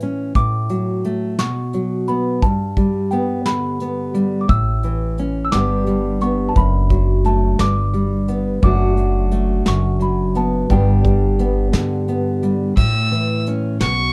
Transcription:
Already playing: steel-string acoustic guitar A2 E3
0.00 steel-string acoustic guitar C#4, closed hi-hat
0.35 steel-string acoustic guitar A2, celesta D6, kick, closed hi-hat
0.69 steel-string acoustic guitar F#3, closed hi-hat
1.04 steel-string acoustic guitar A3, closed hi-hat
1.39 steel-string acoustic guitar B2, celesta C#6, snare, closed hi-hat
1.73 steel-string acoustic guitar F#3, closed hi-hat
2.08 steel-string acoustic guitar B3, celesta B5, closed hi-hat
2.42 steel-string acoustic guitar G2, celesta A5, kick, closed hi-hat
2.76 steel-string acoustic guitar G3, kick, closed hi-hat
3.11 steel-string acoustic guitar B3, celesta G5, closed hi-hat
3.46 steel-string acoustic guitar D3, celesta B5, snare, closed hi-hat
3.80 steel-string acoustic guitar B3, closed hi-hat
4.14 steel-string acoustic guitar G3, closed hi-hat
4.41 celesta D6
4.48 upright bass A1, steel-string acoustic guitar A2, celesta E6, kick, closed hi-hat
4.83 steel-string acoustic guitar E3, closed hi-hat
5.18 steel-string acoustic guitar C#4, closed hi-hat
5.45 celesta E6
5.52 upright bass G1, steel-string acoustic guitar G2 G3 B3 D4 G4, celesta D6, snare, closed hi-hat
5.86 steel-string acoustic guitar G3, closed hi-hat
6.21 steel-string acoustic guitar B3, celesta C#6, closed hi-hat
6.49 celesta A5
6.55 upright bass F#1, steel-string acoustic guitar F#2, celesta B5, kick, closed hi-hat
6.90 steel-string acoustic guitar F#3, kick, closed hi-hat
7.24 steel-string acoustic guitar A3, celesta A5, closed hi-hat
7.59 upright bass G1, steel-string acoustic guitar G2, celesta D6, snare, closed hi-hat
7.94 steel-string acoustic guitar G3, closed hi-hat
8.28 steel-string acoustic guitar B3, closed hi-hat
8.62 upright bass F#1, steel-string acoustic guitar F#2 F#3 A3 D4 F#4, celesta D6, kick, closed hi-hat
8.97 steel-string acoustic guitar F#3, closed hi-hat
9.31 steel-string acoustic guitar A3, closed hi-hat
9.65 upright bass F#1, steel-string acoustic guitar F#2, celesta C#6, snare, closed hi-hat
9.99 steel-string acoustic guitar F#3, celesta B5, closed hi-hat
10.35 steel-string acoustic guitar B3, celesta A5, closed hi-hat
10.70 upright bass G1, steel-string acoustic guitar G2 G3 B3 D4 G4, celesta G5, kick, closed hi-hat
11.05 steel-string acoustic guitar G3, kick, closed hi-hat
11.39 steel-string acoustic guitar B3, closed hi-hat
11.72 upright bass G2, steel-string acoustic guitar D3, snare, closed hi-hat
12.08 steel-string acoustic guitar B3, closed hi-hat
12.43 steel-string acoustic guitar G3, closed hi-hat
12.77 steel-string acoustic guitar A2, upright bass A2, fiddle E6, kick, crash
13.12 steel-string acoustic guitar E3, closed hi-hat
13.46 steel-string acoustic guitar C#4, closed hi-hat
13.81 upright bass B1, steel-string acoustic guitar B2, fiddle C#6, snare, closed hi-hat

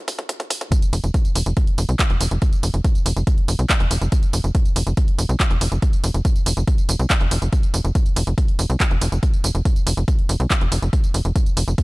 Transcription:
0.08 kick, open hi-hat
0.19 kick, closed hi-hat
0.29 kick, closed hi-hat
0.40 kick, closed hi-hat
0.50 kick, open hi-hat
0.61 kick, closed hi-hat
0.72 kick, closed hi-hat, tambourine
0.82 closed hi-hat, tambourine
0.93 analog synth bass F1, open hi-hat, tambourine
1.04 analog synth bass F1, closed hi-hat, tambourine
1.14 kick, closed hi-hat, tambourine
1.25 closed hi-hat, tambourine
1.35 analog synth bass F1, open hi-hat, tambourine
1.46 analog synth bass F1, closed hi-hat, tambourine
1.57 kick, closed hi-hat, tambourine
1.67 closed hi-hat
1.78 analog synth bass F1, open hi-hat, tambourine
1.89 analog synth bass C2, closed hi-hat, tambourine
1.99 kick, clap, closed hi-hat, tambourine
2.10 analog synth bass F1, closed hi-hat
2.21 analog synth bass F1, open hi-hat, tambourine
2.31 analog synth bass F1, closed hi-hat, tambourine
2.42 kick, closed hi-hat, tambourine
2.53 closed hi-hat, tambourine
2.63 analog synth bass F1, open hi-hat, tambourine
2.74 analog synth bass F1, closed hi-hat, tambourine
2.84 kick, closed hi-hat, tambourine
2.95 closed hi-hat, tambourine
3.06 analog synth bass F1, open hi-hat, tambourine
3.17 analog synth bass F1, closed hi-hat, tambourine
3.27 kick, closed hi-hat, tambourine
3.38 closed hi-hat
3.48 analog synth bass F1, open hi-hat, tambourine
3.59 analog synth bass C2, closed hi-hat, tambourine
3.70 kick, clap, closed hi-hat, tambourine
3.80 analog synth bass F1, closed hi-hat
3.91 analog synth bass F1, open hi-hat, tambourine
4.02 analog synth bass F1, closed hi-hat, tambourine
4.12 kick, closed hi-hat, tambourine
4.23 closed hi-hat, tambourine
4.33 analog synth bass F1, open hi-hat, tambourine
4.44 analog synth bass F1, closed hi-hat, tambourine
4.55 kick, closed hi-hat, tambourine
4.66 closed hi-hat, tambourine
4.76 analog synth bass F1, open hi-hat, tambourine
4.87 analog synth bass F1, closed hi-hat, tambourine
4.97 kick, closed hi-hat, tambourine
5.08 closed hi-hat
5.19 analog synth bass F1, open hi-hat, tambourine
5.29 analog synth bass C2, closed hi-hat, tambourine
5.40 kick, clap, closed hi-hat, tambourine
5.51 analog synth bass F1, closed hi-hat
5.61 analog synth bass F1, open hi-hat, tambourine
5.72 analog synth bass F1, closed hi-hat, tambourine
5.82 kick, closed hi-hat, tambourine
5.93 closed hi-hat, tambourine
6.04 analog synth bass F1, open hi-hat, tambourine
6.14 analog synth bass F1, closed hi-hat, tambourine
6.25 kick, closed hi-hat, tambourine
6.36 closed hi-hat, tambourine
6.46 analog synth bass F1, open hi-hat, tambourine
6.57 analog synth bass F1, closed hi-hat, tambourine
6.67 kick, closed hi-hat, tambourine
6.78 closed hi-hat, tambourine
6.89 analog synth bass F1, open hi-hat, tambourine
6.99 analog synth bass C2, closed hi-hat, tambourine
7.10 kick, clap, closed hi-hat, tambourine
7.21 analog synth bass F1, closed hi-hat
7.31 analog synth bass F1, open hi-hat, tambourine
7.42 analog synth bass F1, closed hi-hat, tambourine
7.53 kick, closed hi-hat, tambourine
7.63 closed hi-hat, tambourine
7.74 analog synth bass F1, open hi-hat, tambourine
7.85 analog synth bass F1, closed hi-hat, tambourine
7.95 kick, closed hi-hat, tambourine
8.06 closed hi-hat, tambourine
8.16 analog synth bass F1, open hi-hat, tambourine
8.27 analog synth bass F1, closed hi-hat, tambourine
8.38 kick, closed hi-hat, tambourine
8.48 closed hi-hat
8.59 analog synth bass F1, open hi-hat, tambourine
8.70 analog synth bass C2, closed hi-hat, tambourine
8.80 kick, clap, closed hi-hat, tambourine
8.91 analog synth bass F1, closed hi-hat
9.01 analog synth bass F1, open hi-hat, tambourine
9.12 analog synth bass F1, closed hi-hat, tambourine
9.23 kick, closed hi-hat, tambourine
9.34 closed hi-hat, tambourine
9.44 analog synth bass F1, open hi-hat, tambourine
9.55 analog synth bass F1, closed hi-hat, tambourine
9.65 kick, closed hi-hat, tambourine
9.76 closed hi-hat, tambourine
9.87 analog synth bass F1, open hi-hat, tambourine
9.97 analog synth bass F1, closed hi-hat, tambourine
10.08 kick, closed hi-hat, tambourine
10.19 closed hi-hat
10.29 analog synth bass F1, open hi-hat, tambourine
10.40 analog synth bass C2, closed hi-hat, tambourine
10.50 kick, clap, closed hi-hat, tambourine
10.61 analog synth bass F1, closed hi-hat
10.72 analog synth bass F1, open hi-hat, tambourine
10.82 analog synth bass F1, closed hi-hat, tambourine
10.93 kick, closed hi-hat, tambourine
11.04 closed hi-hat, tambourine
11.14 analog synth bass F1, open hi-hat, tambourine
11.25 analog synth bass F1, closed hi-hat, tambourine
11.36 kick, closed hi-hat, tambourine
11.46 closed hi-hat, tambourine
11.57 analog synth bass F1, open hi-hat, tambourine
11.68 analog synth bass F1, closed hi-hat, tambourine
11.78 kick, closed hi-hat, tambourine

